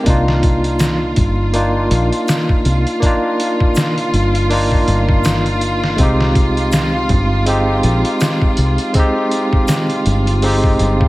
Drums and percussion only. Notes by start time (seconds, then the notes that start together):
0.06 kick, closed hi-hat
0.28 snare
0.43 kick, closed hi-hat
0.64 closed hi-hat
0.79 snare, closed hi-hat, shaker
1.16 kick, closed hi-hat
1.54 closed hi-hat
1.91 closed hi-hat
2.13 closed hi-hat
2.28 snare, closed hi-hat, shaker
2.49 kick
2.65 closed hi-hat
2.87 closed hi-hat
3.02 kick, closed hi-hat
3.40 closed hi-hat
3.60 kick
3.75 snare, closed hi-hat, shaker
3.98 closed hi-hat
4.14 closed hi-hat
4.35 closed hi-hat
4.51 open hi-hat
4.72 kick
4.88 closed hi-hat
5.09 kick
5.24 snare, closed hi-hat, shaker
5.46 closed hi-hat
5.61 closed hi-hat
5.84 snare
5.98 kick, closed hi-hat
6.20 snare
6.35 kick, closed hi-hat
6.57 closed hi-hat
6.72 snare, closed hi-hat, shaker
7.09 kick, closed hi-hat
7.46 closed hi-hat
7.83 closed hi-hat
8.05 closed hi-hat
8.21 snare, closed hi-hat, shaker
8.42 kick
8.57 closed hi-hat
8.78 closed hi-hat
8.94 kick, closed hi-hat
9.31 closed hi-hat
9.53 kick
9.68 snare, closed hi-hat, shaker
9.90 closed hi-hat
10.06 closed hi-hat
10.27 closed hi-hat
10.42 open hi-hat
10.64 kick
10.79 closed hi-hat
11.01 kick